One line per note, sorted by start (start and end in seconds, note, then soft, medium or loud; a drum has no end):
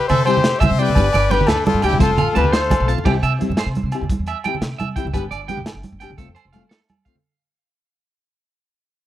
0.00 0.94 E5 medium
0.00 1.97 G5 medium
0.00 0.92 C6 medium
0.08 0.52 C3 medium
0.08 0.25 A4 medium
0.08 0.24 C5 medium
0.08 0.19 E5 medium
0.08 closed hi-hat soft
0.08 low conga medium
0.08 low agogo medium
0.25 0.36 G3 medium
0.25 0.37 C4 medium
0.25 0.37 E4 medium
0.25 0.38 G4 medium
0.25 0.66 G4 medium
0.25 0.61 C5 loud
0.25 0.36 G5 medium
0.25 closed hi-hat soft
0.25 low agogo medium
0.37 low conga medium
0.44 snare medium
0.44 closed hi-hat medium
0.44 low conga soft
0.60 0.68 C3 loud
0.60 0.81 E5 medium
0.60 0.70 E5 medium
0.60 kick medium
0.60 closed hi-hat soft
0.60 high conga loud
0.60 low conga loud
0.60 low agogo medium
0.65 0.84 C5 medium
0.71 0.92 C3 medium
0.71 low conga soft
0.78 0.89 G3 medium
0.78 0.89 C4 medium
0.78 0.89 E4 medium
0.78 0.90 G4 medium
0.78 1.33 D5 medium
0.78 0.88 G5 medium
0.78 closed hi-hat soft
0.83 1.36 B4 medium
0.89 low conga medium
0.95 1.10 G1 medium
0.95 1.06 B3 medium
0.95 1.06 D4 medium
0.95 1.07 G4 medium
0.95 1.06 B4 medium
0.95 2.00 D5 medium
0.95 1.99 B5 medium
0.95 kick medium
0.95 closed hi-hat medium
0.95 high conga medium
0.95 low agogo medium
1.13 1.42 G1 medium
1.13 1.23 D5 medium
1.13 closed hi-hat soft
1.13 low conga loud
1.13 low agogo medium
1.29 1.40 B3 medium
1.29 1.41 D4 medium
1.29 1.50 B4 loud
1.29 1.40 G5 medium
1.29 muted steel-string acoustic guitar stroke medium
1.29 snare soft
1.29 closed hi-hat soft
1.29 high conga medium
1.35 1.53 G4 medium
1.41 low conga medium
1.47 1.62 D2 medium
1.47 1.65 A4 medium
1.47 1.58 B4 medium
1.47 snare medium
1.47 closed hi-hat medium
1.47 low agogo medium
1.52 1.67 D4 medium
1.66 1.83 F4 medium
1.66 1.82 A4 medium
1.66 closed hi-hat soft
1.66 high conga loud
1.66 low conga loud
1.74 1.81 G2 medium
1.80 1.90 D2 loud
1.80 1.93 D4 medium
1.80 1.93 G4 medium
1.80 1.93 G5 medium
1.80 muted steel-string acoustic guitar stroke medium
1.80 closed hi-hat medium
1.80 low agogo medium
1.85 2.01 E4 medium
1.85 2.00 G4 medium
1.92 1.99 C2 medium
1.92 low conga medium
1.98 2.14 F1 loud
1.98 2.10 A3 medium
1.98 2.10 C4 medium
1.98 2.10 F4 medium
1.98 2.33 A4 medium
1.98 2.10 C5 medium
1.98 3.04 F5 medium
1.98 3.04 A5 medium
1.98 3.04 C6 medium
1.98 kick medium
1.98 closed hi-hat medium
1.98 high conga medium
1.98 low conga soft
2.04 2.35 F4 medium
2.18 2.25 A1 medium
2.18 2.27 F5 medium
2.18 closed hi-hat soft
2.18 low conga medium
2.18 low agogo medium
2.27 low conga soft
2.32 2.44 A3 medium
2.32 2.44 C4 medium
2.32 2.45 F4 medium
2.32 2.44 A5 medium
2.32 closed hi-hat soft
2.36 2.71 D2 medium
2.36 2.57 G4 medium
2.36 2.54 B4 medium
2.36 high conga medium
2.36 low conga soft
2.36 low agogo medium
2.44 low conga medium
2.52 2.93 A4 medium
2.52 2.62 C5 medium
2.52 2.92 C5 medium
2.52 snare medium
2.52 closed hi-hat medium
2.70 kick medium
2.70 closed hi-hat medium
2.70 high conga loud
2.70 low conga loud
2.70 low agogo medium
2.80 2.94 B1 medium
2.80 low conga soft
2.85 2.96 A3 medium
2.85 2.98 C4 medium
2.85 2.98 F4 medium
2.85 2.97 A5 medium
2.85 closed hi-hat medium
2.90 low conga soft
2.98 low conga medium
3.04 3.19 C2 medium
3.04 3.15 E3 medium
3.04 3.15 C4 medium
3.04 3.16 E4 medium
3.04 3.14 G4 medium
3.04 3.16 G4 medium
3.04 kick medium
3.04 crash medium
3.04 high conga medium
3.04 low agogo medium
3.23 3.36 C3 medium
3.23 3.32 E5 medium
3.23 closed hi-hat soft
3.23 low agogo medium
3.38 3.50 C4 medium
3.38 3.50 E4 medium
3.38 3.51 G4 medium
3.38 muted steel-string acoustic guitar stroke medium
3.38 closed hi-hat soft
3.38 high conga medium
3.50 3.63 G2 medium
3.50 low conga medium
3.57 3.68 C5 medium
3.57 snare medium
3.57 closed hi-hat medium
3.57 low agogo medium
3.66 3.80 C3 medium
3.75 closed hi-hat soft
3.75 high conga medium
3.83 3.90 C3 medium
3.83 low conga soft
3.92 4.03 C4 medium
3.92 4.03 E4 medium
3.92 4.04 G4 medium
3.92 muted steel-string acoustic guitar stroke medium
3.92 closed hi-hat soft
3.92 low conga soft
3.92 low agogo medium
4.01 4.15 E2 medium
4.01 low conga medium
4.09 kick medium
4.09 closed hi-hat medium
4.09 high conga medium
4.09 low conga soft
4.19 4.33 E2 medium
4.26 4.37 E5 medium
4.26 closed hi-hat soft
4.26 low conga soft
4.26 low agogo medium
4.44 4.55 E3 soft
4.44 4.55 C4 soft
4.44 4.56 E4 medium
4.44 4.56 G4 medium
4.44 4.54 G5 medium
4.44 closed hi-hat soft
4.44 high conga medium
4.44 low agogo medium
4.55 low conga medium
4.61 4.75 C3 medium
4.61 snare medium
4.61 closed hi-hat medium
4.78 4.93 C3 medium
4.78 4.88 E5 medium
4.78 closed hi-hat medium
4.78 high conga medium
4.78 low agogo medium
4.96 5.06 E3 medium
4.96 5.07 C4 medium
4.96 5.07 E4 medium
4.96 5.08 G4 medium
4.96 5.05 G5 medium
4.96 kick medium
4.96 closed hi-hat soft
5.05 5.12 C2 medium
5.05 low conga medium
5.13 5.28 G1 medium
5.13 5.24 B3 medium
5.13 5.24 D4 medium
5.13 5.25 G4 medium
5.13 5.23 B4 medium
5.13 kick medium
5.13 closed hi-hat medium
5.13 high conga medium
5.13 low agogo medium
5.31 5.52 G1 medium
5.31 5.40 D5 medium
5.31 closed hi-hat soft
5.31 low agogo medium
5.48 5.59 B3 medium
5.48 5.59 D4 medium
5.48 5.60 G4 medium
5.48 5.58 G5 medium
5.48 closed hi-hat soft
5.48 high conga medium
5.57 5.64 B1 medium
5.57 low conga medium
5.66 snare medium
5.66 closed hi-hat medium
5.66 low agogo medium
5.74 5.82 G1 medium
5.83 closed hi-hat soft
5.83 high conga medium
5.92 6.06 G1 medium
6.00 6.11 B3 medium
6.00 6.12 D4 medium
6.00 6.12 G4 medium
6.00 6.10 G5 medium
6.00 closed hi-hat soft
6.00 low conga soft
6.00 low agogo medium
6.10 6.17 E1 medium
6.10 low conga medium
6.17 6.25 F1 medium
6.17 6.28 A3 medium
6.17 6.29 C4 medium
6.17 6.29 F4 medium
6.17 6.27 A4 medium
6.17 kick medium
6.17 closed hi-hat medium
6.17 high conga medium
6.17 low conga soft
6.28 6.35 F2 medium
6.35 6.44 C5 medium
6.35 closed hi-hat soft
6.35 low conga soft
6.35 low agogo medium
6.45 6.59 F1 medium
6.53 6.64 A3 medium
6.53 6.64 C4 medium
6.53 6.65 F4 medium
6.53 6.62 F5 medium
6.53 closed hi-hat soft
6.53 high conga medium
6.53 low agogo medium
6.69 6.79 A4 medium
6.69 snare medium
6.69 closed hi-hat medium
6.89 closed hi-hat soft
6.89 high conga medium
6.89 low agogo medium
7.05 7.16 A3 medium
7.05 7.17 C4 medium
7.05 7.17 F4 medium
7.05 7.15 F5 medium
7.05 kick medium
7.05 closed hi-hat soft
7.16 low conga medium